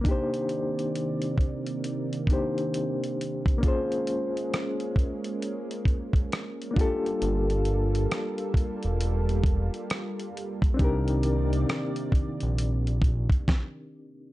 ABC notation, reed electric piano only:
X:1
M:4/4
L:1/8
Q:"Swing 16ths" 1/4=67
K:Cdor
V:1 name="Reed electric piano"
[B,DEGc]4- [B,DEGc] [B,DEGc]3 | [B,_DF_Ac]6- [B,DFAc] [B,=DFG=A]- | [B,DFGA]6- [B,DFGA] z | [CDEGB]8 |]